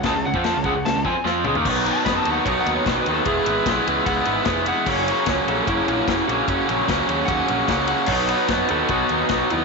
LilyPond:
<<
  \new Staff \with { instrumentName = "Electric slide guitar" } { \time 4/4 \key fis \major \tempo 4 = 149 a''8 fis''8 a''8 fis''8 a''8 gis''8 r4 | \tuplet 3/2 { r4 a''8 b''8 a''8 fis''8 cis''8 fis''8 cis''8 bis'8 b'8 a'8 } | gis'4 r4 fis''4. fis''8 | cis''4. a'8 e'4. fis'8~ |
fis'8 r4. fis''4. fis''8 | cis''4. a'8 fis'4. e'8 | }
  \new Staff \with { instrumentName = "Overdriven electric guitar" } { \clef bass \time 4/4 \key fis \major <cis gis>16 <cis gis>16 <cis gis>16 <eis bis eis'>8 <cis gis>16 <cis gis>16 <cis gis>16 <cis gis>16 <cis gis>16 <eis bis>16 r16 <eis bis eis'>8 <cis gis>16 <dis ais>16 | <b, dis fis b dis'>8 <b, dis fis b dis'>8 <b, dis fis b dis'>8 <b, dis fis b dis'>8 <b, dis fis b dis'>8 <b, dis fis b dis'>8 <b, dis fis b dis'>8 <b, dis fis b dis'>8 | <e gis b e'>8 <e gis b e'>8 <e gis b e'>8 <e gis b e'>8 <e gis b e'>8 <e gis b e'>8 <e gis b e'>8 <e gis b e'>8 | <fis, cis fis ais cis'>8 <fis, cis fis ais cis'>8 <fis, cis fis ais cis'>8 <fis, cis fis ais cis'>8 <fis, cis fis ais cis'>8 <fis, cis fis ais cis'>8 <fis, cis fis ais cis'>8 <fis, cis fis ais cis'>8 |
<fis, cis fis ais cis'>8 <fis, cis fis ais cis'>8 <fis, cis fis ais cis'>8 <fis, cis fis ais cis'>8 <fis, cis fis ais cis'>8 <fis, cis fis ais cis'>8 <fis, cis fis ais cis'>8 <fis, cis fis ais cis'>8 | <b, fis b dis'>8 <b, fis b dis'>8 <b, fis b dis'>8 <b, fis b dis'>8 <b, fis b dis'>8 <b, fis b dis'>8 <b, fis b dis'>8 <b, fis b dis'>8 | }
  \new Staff \with { instrumentName = "Picked electric bass" } { \clef bass \time 4/4 \key fis \major cis,16 cis,16 cis,16 eis,8 cis,16 cis,16 cis,16 cis,16 cis,16 eis,16 r16 eis,8 cis,16 dis,16 | b,,4 fis,8 dis,8 b,,8 dis,8 b,,8 dis,8 | e,,8 gis,,8 b,,8 cis,8 cis,8 gis,,8 eis,,4 | fis,,4 cis,8 ais,,8 fis,,8 ais,,8 fis,,8 ais,,8 |
fis,,8 ais,,8 cis,8 dis,8 dis,8 ais,,8 cis,4 | b,,4 fis,8 dis,8 b,,8 dis,8 b,,8 dis,8 | }
  \new DrumStaff \with { instrumentName = "Drums" } \drummode { \time 4/4 <cymc bd sn>8. bd16 <cymc sn>8 bd8 <cymc sn>8 bd8 sn8 toml16 tomfh16 | <cymc bd>8 cymr8 <bd cymr sn>8 cymr8 <bd cymr>8 cymr8 <bd cymr sn>8 cymr8 | <bd cymr>8 cymr8 <bd cymr sn>8 cymr8 <bd cymr>8 cymr8 <bd cymr sn>8 cymr8 | <cymc bd>8 cymr8 <bd cymr sn>8 cymr8 <bd cymr>8 cymr8 <bd cymr sn>8 cymr8 |
<bd cymr>8 cymr8 <bd cymr sn>8 cymr8 <bd cymr>8 cymr8 <bd cymr sn>8 cymr8 | <cymc bd>8 cymr8 <bd cymr sn>8 cymr8 <bd cymr>8 cymr8 <bd cymr sn>8 cymr8 | }
>>